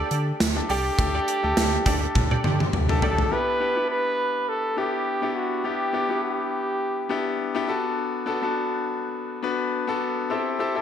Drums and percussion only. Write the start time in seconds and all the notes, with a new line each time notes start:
0.11 closed hi-hat
0.40 snare, closed hi-hat
0.70 open hi-hat
0.99 kick, closed hi-hat
1.28 closed hi-hat
1.57 snare, closed hi-hat
1.86 kick, closed hi-hat
2.15 kick, high tom
2.31 high tom
2.44 mid tom
2.60 mid tom
2.73 mid tom
2.89 mid tom
3.02 floor tom
3.18 floor tom